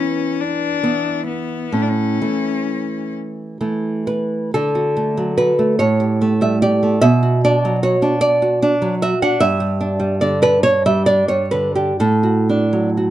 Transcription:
0.00 0.80 E3 soft
0.00 0.80 B3 soft
0.00 0.42 C#4 medium
0.40 1.26 D4 medium
0.83 1.69 E3 soft
0.83 1.69 B3 soft
1.27 1.75 B3 medium
1.72 2.18 A2 soft
1.72 1.83 C#4 medium
1.82 1.91 D4 soft
1.90 3.14 C#4 medium
2.22 3.57 E3 soft
2.22 3.57 A3 soft
3.61 4.51 E3 soft
3.61 4.51 A3 soft
4.07 4.52 B4 medium
4.54 5.77 D3 medium
4.54 5.36 A4 medium
4.75 5.10 F#4 soft
4.97 5.31 A3 soft
5.17 5.51 F#3 soft
5.38 5.72 F#4 soft
5.38 5.78 B4 medium
5.59 5.80 A3 soft
5.79 6.99 A2 medium
5.79 6.39 C#5 medium
6.00 6.34 G4 soft
6.21 6.54 A3 soft
6.41 6.74 G3 soft
6.41 6.62 E5 medium
6.62 6.95 G4 medium
6.62 7.01 D5 medium
6.83 7.03 A3 soft
7.01 9.37 B2 medium
7.01 7.40 E5 medium
7.23 7.54 F#4 soft
7.44 7.75 D4 medium
7.44 7.82 D5 medium
7.65 7.95 F#3 soft
7.83 8.14 F#4 medium
7.83 8.21 C#5 medium
8.02 8.61 D4 medium
8.21 8.98 D5 loud
8.42 8.74 F#4 medium
8.62 8.94 D4 medium
8.82 9.13 F#3 medium
9.02 9.34 F#4 medium
9.02 9.22 E5 medium
9.22 9.42 D4 medium
9.22 9.42 F#5 medium
9.40 11.98 G2 medium
9.40 10.19 E5 loud
9.60 9.93 G3 soft
9.81 10.14 D4 soft
10.00 10.34 G3 medium
10.21 10.56 D3 soft
10.21 10.42 D5 medium
10.42 11.06 D4 medium
10.42 10.63 B4 loud
10.63 10.85 C#5 loud
10.86 11.22 G3 medium
10.86 11.06 E5 medium
11.06 11.45 D4 medium
11.06 11.28 D5 medium
11.28 11.68 G3 soft
11.28 11.53 C#5 medium
11.51 11.91 D3 soft
11.51 11.75 B4 medium
11.75 12.01 D4 soft
11.75 12.00 G4 medium
12.00 13.10 A2 medium
12.00 13.10 A4 medium
12.23 12.64 F#4 soft
12.49 12.89 D4 soft
12.73 13.10 F#3 soft
12.97 13.10 F#4 soft

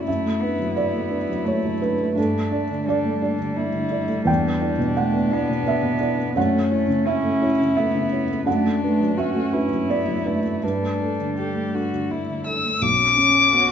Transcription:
0.00 0.10 D5 medium
0.06 2.13 F#2 soft
0.06 0.42 A3 soft
0.06 2.12 E4 soft
0.06 0.73 E5 medium
0.25 0.53 A3 soft
0.41 0.74 B3 soft
0.41 0.58 D4 soft
0.41 0.58 B4 soft
0.59 1.15 F#3 soft
0.74 1.46 B3 soft
0.74 1.43 D5 medium
0.95 1.23 A3 soft
1.10 1.27 D4 soft
1.10 1.27 B4 soft
1.29 1.57 F#3 soft
1.45 2.15 A3 soft
1.45 1.74 A3 soft
1.45 1.80 C#5 medium
1.65 1.93 F#3 soft
1.82 1.98 D4 soft
1.82 2.15 B4 medium
1.99 2.17 A3 soft
2.15 4.23 G2 medium
2.15 2.89 A3 soft
2.15 2.86 D4 soft
2.15 2.85 A4 medium
2.33 2.63 A3 soft
2.51 2.68 D4 soft
2.51 2.69 D5 soft
2.71 3.27 D3 soft
2.87 3.21 G3 medium
2.87 3.58 D4 soft
2.87 3.21 D5 medium
3.05 3.33 A3 soft
3.22 5.00 G3 medium
3.22 3.38 D4 soft
3.22 3.38 D5 soft
3.38 3.67 D3 soft
3.56 3.85 A3 soft
3.56 4.27 E4 medium
3.74 4.02 D3 soft
3.91 4.08 D4 soft
3.91 4.08 D5 soft
4.08 4.27 A3 soft
4.25 6.31 E2 medium
4.25 6.32 D4 medium
4.25 4.93 G5 medium
4.43 4.72 B3 soft
4.61 4.78 E4 soft
4.61 4.78 D5 medium
4.79 5.35 B2 soft
4.97 5.35 A3 medium
4.97 5.63 F#5 medium
5.13 5.42 B3 soft
5.31 6.37 B3 medium
5.31 5.47 E4 soft
5.31 5.47 D5 soft
5.50 5.77 B2 soft
5.66 5.94 B3 soft
5.66 6.00 E5 medium
5.83 6.11 B2 soft
6.00 6.16 E4 soft
6.00 6.17 D5 soft
6.18 6.36 B3 soft
6.36 8.42 F#2 medium
6.36 6.71 A3 medium
6.36 7.08 C#4 medium
6.36 7.02 F#5 medium
6.53 6.81 A3 soft
6.70 7.07 A3 medium
6.70 6.86 E4 soft
6.70 6.87 C#5 soft
6.88 7.44 C#3 soft
7.05 7.78 C#4 medium
7.05 8.45 E4 medium
7.05 7.72 E5 medium
7.23 7.51 A3 soft
7.42 7.57 E4 soft
7.42 7.58 C#5 soft
7.59 7.87 C#3 soft
7.76 8.05 A3 soft
7.76 8.46 B3 medium
7.76 8.43 E5 medium
7.95 8.22 C#3 soft
8.12 8.27 E4 soft
8.12 8.28 C#5 soft
8.30 8.47 A3 soft
8.46 10.58 F#2 medium
8.46 8.81 A3 medium
8.46 9.19 D4 medium
8.46 9.13 F#5 medium
8.66 8.93 A3 soft
8.82 9.19 A3 medium
8.82 8.98 D4 soft
8.82 8.99 B4 soft
9.00 9.57 F#3 soft
9.17 9.92 C#4 soft
9.17 9.54 F#4 soft
9.17 9.86 E5 medium
9.35 9.64 A3 soft
9.53 9.69 D4 soft
9.53 10.64 E4 soft
9.53 9.69 B4 soft
9.71 10.00 F#3 soft
9.89 10.18 A3 soft
9.89 10.28 B3 soft
9.89 10.59 D5 medium
10.08 10.37 F#3 soft
10.25 10.67 A3 soft
10.25 10.42 D4 soft
10.25 10.42 B4 soft
10.45 10.63 A3 soft
10.61 12.78 G2 medium
10.61 12.64 G3 soft
10.61 11.30 D4 soft
10.61 11.34 B4 medium
10.81 11.11 A3 soft
11.00 11.17 D4 soft
11.00 11.17 A4 soft
11.20 11.78 D3 soft
11.38 11.76 G4 soft
11.38 11.73 A4 soft
11.55 11.84 A3 soft
11.74 11.90 D4 soft
11.74 12.13 F#4 soft
11.74 11.90 A4 soft
11.92 12.21 D3 soft
12.10 12.39 A3 soft
12.10 12.46 E4 soft
12.28 12.57 D3 soft
12.46 12.62 D4 soft
12.46 12.63 A4 soft
12.46 12.84 E6 medium
12.64 12.82 A3 soft
12.82 13.72 B1 medium
12.82 13.72 C#4 medium
12.82 13.72 D6 medium
13.17 13.72 C#4 soft
13.53 13.72 B3 soft
13.53 13.72 F#4 medium

